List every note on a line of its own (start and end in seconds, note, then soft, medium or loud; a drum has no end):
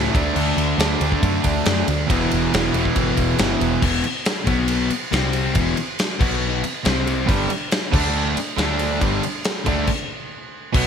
0.00 0.12 A2 medium
0.00 0.13 A2 medium
0.00 0.13 E3 medium
0.00 0.14 E3 medium
0.00 0.12 A3 medium
0.00 0.13 A3 medium
0.13 0.31 D2 loud
0.13 0.33 D3 loud
0.13 0.34 A3 loud
0.13 0.35 D4 loud
0.13 kick loud
0.13 ride medium
0.34 0.52 D2 loud
0.34 0.77 D3 loud
0.34 0.77 A3 loud
0.34 0.78 D4 loud
0.34 crash loud
0.57 0.73 D2 medium
0.57 ride medium
0.78 0.95 D2 loud
0.78 0.99 D3 loud
0.78 0.99 A3 medium
0.78 1.00 D4 medium
0.78 snare loud
0.78 ride loud
1.00 1.17 D2 medium
1.00 1.19 D3 medium
1.00 1.20 A3 loud
1.00 1.20 D4 loud
1.00 ride medium
1.12 kick medium
1.20 1.39 F#2 loud
1.20 1.63 D3 loud
1.20 1.64 A3 loud
1.20 1.65 D4 loud
1.20 kick loud
1.20 ride loud
1.42 1.60 D2 loud
1.42 1.86 A3 medium
1.42 1.85 D4 medium
1.42 kick medium
1.42 ride medium
1.46 1.87 D3 medium
1.65 1.82 F#2 loud
1.65 1.85 D3 medium
1.65 1.86 A3 medium
1.65 1.87 D4 medium
1.65 snare loud
1.65 ride loud
1.87 2.04 D2 medium
1.87 2.07 D3 medium
1.87 2.08 A3 medium
1.87 2.08 D4 loud
1.87 ride medium
2.08 2.25 E1 loud
2.08 2.49 E2 medium
2.08 2.51 B2 loud
2.08 2.51 E3 loud
2.08 kick loud
2.08 ride loud
2.12 3.83 E3 loud
2.31 2.48 E1 medium
2.31 ride medium
2.50 2.69 E1 loud
2.50 2.72 E2 medium
2.50 2.72 B2 medium
2.50 2.73 E3 loud
2.50 ride loud
2.55 snare loud
2.73 2.90 E1 medium
2.73 2.93 E2 medium
2.73 2.94 B2 medium
2.73 2.94 E3 loud
2.73 ride medium
2.85 kick medium
2.94 3.12 G1 loud
2.94 3.36 E2 loud
2.94 3.36 B2 loud
2.94 3.37 E3 loud
2.94 kick loud
2.94 ride loud
3.17 3.34 E1 medium
3.17 kick medium
3.17 ride medium
3.37 3.55 G1 medium
3.37 3.57 E2 medium
3.37 3.57 B2 medium
3.37 3.58 E3 medium
3.37 snare loud
3.37 ride loud
3.58 3.77 E1 medium
3.58 3.80 E2 medium
3.58 3.80 B2 medium
3.58 3.80 E3 medium
3.58 ride medium
3.82 4.02 E1 medium
3.82 4.01 E2 medium
3.82 4.03 B2 loud
3.82 4.04 E3 loud
3.82 kick loud
3.82 crash loud
4.03 muted distorted electric guitar stroke medium
4.03 muted overdriven electric guitar stroke medium
4.03 muted picked electric bass stroke soft
4.03 ride medium
4.25 snare loud
4.25 ride loud
4.44 4.87 B1 loud
4.44 4.88 B2 medium
4.44 4.89 F#3 loud
4.44 4.89 B3 loud
4.44 kick loud
4.44 ride medium
4.68 ride loud
4.89 muted distorted electric guitar stroke medium
4.89 muted picked electric bass stroke soft
4.89 muted overdriven electric guitar stroke medium
4.89 ride medium
5.11 5.53 C2 medium
5.11 5.54 C3 medium
5.11 5.55 G3 medium
5.11 5.55 C4 loud
5.11 snare loud
5.11 ride loud
5.33 ride medium
5.54 5.75 E1 medium
5.54 5.76 E2 loud
5.54 5.76 B2 loud
5.54 5.77 E3 loud
5.54 kick loud
5.54 ride loud
5.77 muted overdriven electric guitar stroke medium
5.77 muted picked electric bass stroke soft
5.77 muted distorted electric guitar stroke medium
5.77 ride medium
5.99 snare loud
5.99 ride loud
6.19 6.61 B1 loud
6.19 6.62 B2 medium
6.19 6.63 F#3 loud
6.19 6.63 B3 loud
6.19 kick loud
6.19 crash loud
6.63 muted distorted electric guitar stroke medium
6.63 muted picked electric bass stroke soft
6.63 muted overdriven electric guitar stroke medium
6.63 ride medium
6.84 7.26 C2 loud
6.84 7.27 C3 medium
6.84 7.27 G3 loud
6.84 7.28 C4 loud
6.84 snare loud
6.84 ride loud
7.07 ride medium
7.27 7.49 G1 loud
7.27 7.49 G2 loud
7.27 7.49 D3 loud
7.27 7.50 G3 loud
7.27 kick loud
7.27 crash loud
7.50 muted overdriven electric guitar stroke medium
7.50 muted distorted electric guitar stroke medium
7.50 muted picked electric bass stroke soft
7.50 ride medium
7.71 snare loud
7.71 ride loud
7.92 8.34 D2 loud
7.92 8.35 D3 loud
7.92 8.36 A3 loud
7.92 8.36 D4 loud
7.92 kick loud
7.92 crash loud
8.36 muted picked electric bass stroke soft
8.36 muted distorted electric guitar stroke medium
8.36 muted overdriven electric guitar stroke medium
8.36 ride medium
8.58 8.99 D2 medium
8.58 8.98 D3 loud
8.58 8.99 A3 loud
8.58 9.02 D4 loud
8.58 snare loud
8.58 ride loud
8.79 ride medium
8.99 9.22 G1 loud
8.99 9.21 G2 loud
8.99 9.22 D3 loud
8.99 9.22 G3 loud
8.99 kick loud
8.99 ride loud
9.22 muted distorted electric guitar stroke medium
9.22 muted picked electric bass stroke soft
9.22 muted overdriven electric guitar stroke medium
9.22 ride medium
9.44 snare loud
9.44 ride loud
9.64 9.87 D2 loud
9.64 9.87 D3 medium
9.64 9.87 A3 loud
9.64 9.88 D4 loud
9.64 kick loud
9.64 ride medium
9.87 kick loud
9.87 crash loud
10.73 10.87 B1 loud
10.73 10.87 B2 loud
10.73 10.87 F#3 loud
10.73 10.87 B3 loud
10.73 kick loud
10.73 crash loud
10.73 crash medium